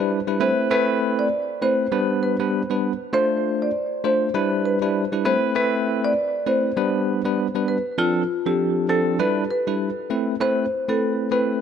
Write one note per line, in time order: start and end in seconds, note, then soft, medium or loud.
0.00 0.19 G3 medium
0.00 0.19 D4 medium
0.00 0.19 E4 medium
0.00 0.19 B4 medium
0.27 0.49 G3 medium
0.27 0.49 D4 medium
0.27 0.39 E4 medium
0.27 0.39 B4 medium
0.40 0.69 A3 medium
0.40 0.69 C4 medium
0.40 0.69 E4 medium
0.40 0.69 B4 loud
0.40 0.56 C5 medium
0.70 1.27 A3 medium
0.70 1.27 C4 medium
0.70 1.27 E4 medium
0.70 1.28 B4 loud
0.70 0.86 B4 loud
1.19 1.45 D5 medium
1.61 1.86 A3 medium
1.61 1.86 C4 medium
1.61 1.86 E4 medium
1.61 1.86 B4 medium
1.61 1.88 C5 medium
1.92 2.36 G3 medium
1.92 2.36 B3 medium
1.92 2.36 D4 medium
1.92 2.36 B4 loud
2.23 2.38 B4 medium
2.40 2.61 G3 medium
2.40 2.61 B3 medium
2.40 2.61 D4 medium
2.40 2.62 B4 medium
2.70 2.92 G3 medium
2.70 2.92 B3 medium
2.70 2.92 D4 medium
2.70 2.92 B4 medium
3.13 3.70 A3 medium
3.13 3.70 D4 medium
3.13 3.70 F4 medium
3.13 3.70 C5 loud
3.13 3.40 C5 loud
3.62 3.73 D5 medium
4.04 4.28 A3 medium
4.04 4.28 D4 medium
4.04 4.28 F4 medium
4.04 4.28 C5 medium
4.04 4.20 C5 medium
4.34 4.78 G3 medium
4.34 4.78 D4 medium
4.34 4.78 E4 medium
4.34 4.78 B4 loud
4.66 4.80 B4 medium
4.82 5.04 G3 medium
4.82 5.04 D4 medium
4.82 5.04 E4 medium
4.82 5.04 B4 medium
5.12 5.34 G3 medium
5.12 5.34 D4 medium
5.12 5.24 E4 medium
5.12 5.24 B4 medium
5.25 5.53 A3 medium
5.25 5.54 C4 medium
5.25 5.54 E4 medium
5.25 5.54 B4 loud
5.25 5.41 C5 medium
5.55 6.12 A3 medium
5.55 6.12 C4 medium
5.55 6.12 E4 medium
5.55 6.12 B4 loud
5.55 5.71 B4 medium
6.05 6.30 D5 medium
6.46 6.70 A3 medium
6.46 6.70 C4 medium
6.46 6.71 E4 medium
6.46 6.71 B4 medium
6.46 6.73 C5 medium
6.77 7.21 G3 medium
6.77 7.21 B3 medium
6.77 7.21 D4 medium
6.77 7.21 B4 loud
7.25 7.46 G3 medium
7.25 7.46 B3 medium
7.25 7.47 D4 medium
7.25 7.47 B4 medium
7.55 7.77 G3 medium
7.55 7.77 B3 medium
7.55 7.77 D4 medium
7.55 7.77 B4 medium
7.68 7.83 B4 medium
7.98 8.22 F3 medium
7.98 8.22 C4 medium
7.98 8.22 D4 medium
7.98 8.13 F4 loud
7.98 8.22 A4 loud
8.46 8.86 F3 medium
8.46 8.86 C4 medium
8.46 8.86 D4 medium
8.46 8.57 G4 medium
8.46 8.86 A4 medium
8.89 9.17 F3 medium
8.89 9.17 C4 medium
8.89 9.17 D4 medium
8.89 9.04 A4 medium
8.89 9.18 A4 medium
9.19 9.43 G3 medium
9.19 9.43 D4 medium
9.19 9.43 E4 medium
9.19 9.44 B4 loud
9.19 9.35 B4 medium
9.51 9.65 B4 medium
9.67 9.89 G3 medium
9.67 9.89 D4 medium
9.67 9.89 E4 medium
9.67 9.89 B4 medium
10.10 10.34 A3 medium
10.10 10.34 C4 medium
10.10 10.34 E4 medium
10.10 10.34 B4 medium
10.40 10.64 A3 medium
10.40 10.65 C4 medium
10.40 10.65 E4 medium
10.40 10.65 B4 loud
10.40 10.56 C5 medium
10.88 11.28 A3 medium
10.88 11.29 C4 medium
10.88 11.29 E4 medium
10.88 11.00 A4 medium
10.88 11.29 B4 medium
11.31 11.60 A3 medium
11.31 11.60 C4 medium
11.31 11.60 E4 medium
11.31 11.60 B4 medium
11.31 11.47 B4 medium